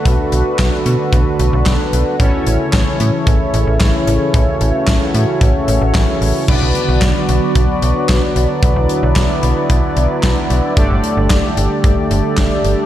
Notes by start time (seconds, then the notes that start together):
Already playing: D3 A3 B3 D4 F#4 A4 B4
0.05 B1, kick, closed hi-hat
0.32 B1, closed hi-hat
0.59 B1, kick, snare, clap, closed hi-hat
0.86 B2, closed hi-hat
1.13 B1, kick, closed hi-hat
1.39 B1, closed hi-hat
1.53 B1
1.66 B1, kick, snare, clap, closed hi-hat
1.93 B1, closed hi-hat
2.20 A1 C#3 E3 A3 C#4 E4 A4 C#5, kick, closed hi-hat
2.47 A1, closed hi-hat
2.73 A1, kick, snare, clap, closed hi-hat
3.00 A2, closed hi-hat
3.27 A1, kick, closed hi-hat
3.54 A1, closed hi-hat
3.67 A1
3.80 A1, kick, snare, clap, closed hi-hat
4.07 A1, closed hi-hat
4.34 A1 F#4, kick, closed hi-hat
4.61 A1, closed hi-hat
4.88 A1, kick, snare, clap, closed hi-hat
5.14 A2, closed hi-hat
5.41 A1, kick, closed hi-hat
5.68 A1, closed hi-hat
5.81 A1
5.95 A1, kick, snare, clap, closed hi-hat
6.21 A1, open hi-hat
6.48 B1 D3 F#3 B3 D4 F#4 B4 D5, kick, crash
6.62 B1
6.75 closed hi-hat
6.89 B1
7.02 B1, kick, snare, clap, closed hi-hat
7.29 B1, closed hi-hat
7.55 B1, kick, closed hi-hat
7.82 B1, closed hi-hat
8.09 B1, kick, snare, clap, closed hi-hat
8.36 B1, closed hi-hat
8.63 B1 E4, kick, closed hi-hat
8.76 B1
8.89 closed hi-hat
9.03 B1
9.16 B1, kick, snare, clap, closed hi-hat
9.43 B1, closed hi-hat
9.70 B1, kick, closed hi-hat
9.97 B1, closed hi-hat
10.23 B1, kick, snare, clap, closed hi-hat
10.50 B1, closed hi-hat
10.77 G1 G3 A3 D4 G4 A4 D5, kick, closed hi-hat
10.90 G1
11.04 closed hi-hat
11.17 G1
11.30 G1, kick, snare, clap, closed hi-hat
11.57 G1, closed hi-hat
11.84 G1, kick, closed hi-hat
12.11 G1, closed hi-hat
12.37 G1, kick, snare, clap, closed hi-hat
12.64 G1, closed hi-hat